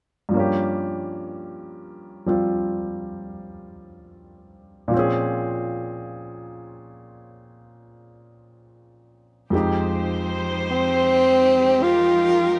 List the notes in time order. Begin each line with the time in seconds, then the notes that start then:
0.29 G2 F3
0.34 A#3 C#4
0.40 G4
2.26 F3 G3 C4 F4
4.88 A#2 F3
4.94 C4 C#4
4.99 G#4
9.50 F2 F3 G#3 D#4 G4 C5
9.54 D#4 G4
10.71 C4
11.83 F4 A#4